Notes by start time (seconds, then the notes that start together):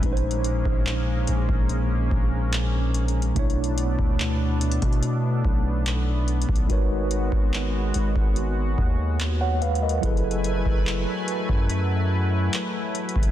0.01 A#1 A#2 G#3 A#3 C#4 D#4, kick, closed hi-hat
0.06 B4
0.13 C5
0.17 closed hi-hat
0.31 closed hi-hat
0.44 closed hi-hat
0.65 A#1, kick
0.87 clap
1.27 A#1, closed hi-hat
1.49 A#1, kick
1.69 closed hi-hat
2.11 A#1, kick
2.53 clap, closed hi-hat
2.94 closed hi-hat
3.08 closed hi-hat
3.22 closed hi-hat
3.34 B1 B2 A3 B3 D4 E4, kick, closed hi-hat
3.39 C#5
3.50 closed hi-hat
3.64 closed hi-hat
3.78 closed hi-hat
3.99 D2, kick
4.20 clap
4.61 closed hi-hat
4.71 closed hi-hat
4.82 B2, kick, closed hi-hat
4.93 closed hi-hat
5.03 closed hi-hat
5.45 B1, kick
5.86 clap, closed hi-hat
6.28 closed hi-hat
6.42 closed hi-hat
6.49 B1, kick
6.56 closed hi-hat
6.67 G#1 G#3 D#4 F#4 A#4, kick, closed hi-hat
6.72 B4 C#5
7.11 closed hi-hat
7.32 G#1, kick
7.54 clap
7.94 G#1, closed hi-hat
8.16 G#1, kick
8.36 closed hi-hat
8.78 D#2, kick
9.20 clap, closed hi-hat
9.41 C#5 F#5
9.62 B4 F5, closed hi-hat
9.75 closed hi-hat
9.82 A#4 D#5
9.89 closed hi-hat
10.01 F#1 F#3 A3 E4 G#4 A4 B4 G#5, kick, closed hi-hat
10.06 B4
10.17 closed hi-hat
10.31 closed hi-hat
10.44 closed hi-hat
10.66 F#1, kick
10.87 clap
11.28 closed hi-hat
11.49 F#2, kick
11.69 closed hi-hat
12.53 clap, closed hi-hat
12.95 closed hi-hat
13.09 closed hi-hat
13.16 F#1, kick
13.23 closed hi-hat